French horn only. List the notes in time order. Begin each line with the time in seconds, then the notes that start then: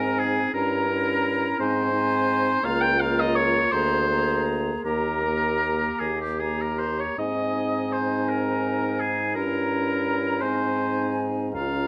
Already playing: C4
0.54 C#4
0.89 C#4
1.58 C4
1.93 C4
2.63 A#3
3.00 A#3
3.72 A#3
4.10 A#3
4.85 A#3
5.24 A#3
6.40 A#3
7.18 C4
9.37 C#4
10.42 C4
11.55 C#4